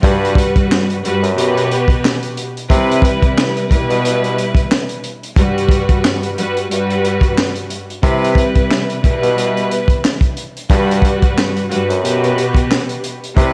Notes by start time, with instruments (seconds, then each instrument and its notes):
0.03 string section G2 G3 F#4 B4, bassoon G2, kick, closed hi-hat
0.25 closed hi-hat
0.35 kick, closed hi-hat
0.56 kick, closed hi-hat
0.72 snare, clap
0.90 closed hi-hat
1.03 string section G2 G3 F#4 B4, closed hi-hat
1.23 bassoon F#2, closed hi-hat
1.36 string section B2 F#4 G4 B4, closed hi-hat
1.57 closed hi-hat
1.71 closed hi-hat
1.88 kick, closed hi-hat
2.05 snare, clap
2.23 closed hi-hat
2.37 closed hi-hat
2.57 closed hi-hat
2.69 string section C3 G3 E4 B4, bassoon C3, kick, closed hi-hat
2.91 closed hi-hat
3.02 kick, closed hi-hat
3.22 kick, closed hi-hat
3.38 snare, clap
3.57 closed hi-hat
3.70 string section B2 G3 E4 B4, kick, closed hi-hat
3.89 bassoon B2, closed hi-hat
4.05 closed hi-hat
4.24 closed hi-hat
4.38 closed hi-hat
4.55 kick, closed hi-hat
4.72 snare, clap
4.89 closed hi-hat
5.04 closed hi-hat
5.23 closed hi-hat
5.36 string section G2 G3 F#4 B4, kick, closed hi-hat
5.58 closed hi-hat
5.69 kick, closed hi-hat
5.89 kick, closed hi-hat
6.05 snare, clap
6.23 closed hi-hat
6.37 string section G2 G3 F#4 B4, closed hi-hat
6.57 closed hi-hat
6.70 string section G2 G3 F#4 B4, closed hi-hat
6.90 closed hi-hat
7.05 closed hi-hat
7.21 kick, closed hi-hat
7.38 snare, clap
7.56 closed hi-hat
7.70 closed hi-hat
7.90 closed hi-hat
8.03 string section C3 G3 E4 B4, bassoon C3, kick, closed hi-hat
8.24 closed hi-hat
8.35 kick, closed hi-hat
8.55 kick, closed hi-hat
8.71 snare, clap
8.90 closed hi-hat
9.03 string section B2 G3 E4 B4, kick, closed hi-hat
9.22 bassoon B2, closed hi-hat
9.38 closed hi-hat
9.57 closed hi-hat
9.71 closed hi-hat
9.88 kick, closed hi-hat
10.05 snare, clap
10.21 kick, closed hi-hat
10.37 closed hi-hat
10.57 closed hi-hat
10.70 string section G2 G3 F#4 B4, bassoon G2, kick, closed hi-hat
10.91 closed hi-hat
11.02 kick, closed hi-hat
11.22 kick, closed hi-hat
11.38 snare, clap
11.57 closed hi-hat
11.70 string section G2 G3 F#4 B4, closed hi-hat
11.89 bassoon F#2, closed hi-hat
12.03 string section B2 F#4 G4 B4, closed hi-hat
12.24 closed hi-hat
12.38 closed hi-hat
12.55 kick, closed hi-hat
12.71 snare, clap
12.89 closed hi-hat
13.04 closed hi-hat
13.24 closed hi-hat
13.36 string section C3 G3 E4 B4, bassoon C3, kick, closed hi-hat